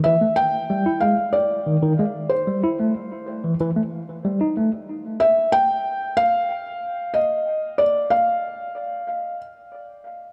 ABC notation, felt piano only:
X:1
M:4/4
L:1/8
Q:1/4=93
K:Gmix
V:1 name="Felt piano"
e g2 ^e d3 ^B- | ^B3 z4 z | e g2 f3 ^d2 | d f4 z3 |]